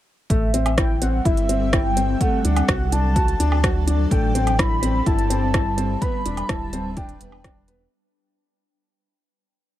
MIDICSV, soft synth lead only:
0, 0, Header, 1, 2, 480
1, 0, Start_track
1, 0, Tempo, 476190
1, 304, Time_signature, 4, 2, 24, 8
1, 9871, End_track
2, 0, Start_track
2, 0, Title_t, "Soft synth lead"
2, 0, Program_c, 0, 80
2, 307, Note_on_c, 0, 76, 85
2, 792, Note_on_c, 0, 79, 105
2, 807, Note_off_c, 0, 76, 0
2, 1029, Note_on_c, 0, 78, 92
2, 1044, Note_off_c, 0, 79, 0
2, 1268, Note_on_c, 0, 76, 95
2, 1283, Note_off_c, 0, 78, 0
2, 1743, Note_on_c, 0, 79, 97
2, 1758, Note_off_c, 0, 76, 0
2, 2228, Note_on_c, 0, 78, 103
2, 2243, Note_off_c, 0, 79, 0
2, 2947, Note_on_c, 0, 81, 112
2, 2962, Note_off_c, 0, 78, 0
2, 3906, Note_off_c, 0, 81, 0
2, 4149, Note_on_c, 0, 79, 107
2, 4624, Note_on_c, 0, 83, 127
2, 4639, Note_off_c, 0, 79, 0
2, 5106, Note_on_c, 0, 81, 111
2, 5121, Note_off_c, 0, 83, 0
2, 6063, Note_on_c, 0, 83, 107
2, 6078, Note_off_c, 0, 81, 0
2, 6538, Note_on_c, 0, 81, 110
2, 6553, Note_off_c, 0, 83, 0
2, 7027, Note_on_c, 0, 79, 87
2, 7042, Note_off_c, 0, 81, 0
2, 7746, Note_off_c, 0, 79, 0
2, 9871, End_track
0, 0, End_of_file